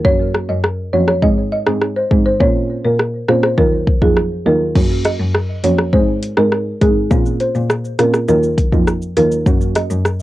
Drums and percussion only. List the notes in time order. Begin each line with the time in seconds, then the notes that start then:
0.05 kick
0.35 cross-stick
0.64 cross-stick
1.08 cross-stick
1.22 kick
1.67 cross-stick
1.81 cross-stick
2.11 kick
2.40 kick
2.99 cross-stick
3.28 cross-stick
3.43 cross-stick
3.58 kick
3.87 kick
4.02 kick
4.17 cross-stick
4.76 kick, crash
5.05 cross-stick, closed hi-hat
5.35 cross-stick
5.64 closed hi-hat
5.78 cross-stick
5.93 kick
6.23 closed hi-hat
6.37 cross-stick
6.52 cross-stick
6.81 kick, closed hi-hat
7.11 kick, shaker
7.26 shaker
7.40 closed hi-hat, shaker
7.55 shaker
7.70 cross-stick, shaker
7.85 shaker
7.99 cross-stick, closed hi-hat, shaker
8.14 cross-stick, shaker
8.28 shaker
8.43 shaker
8.58 kick, closed hi-hat, shaker
8.72 kick, shaker
8.87 cross-stick, shaker
9.02 shaker
9.17 closed hi-hat, shaker
9.32 shaker
9.46 kick, shaker
9.61 shaker
9.75 cross-stick, closed hi-hat, shaker
9.90 shaker
10.05 cross-stick, shaker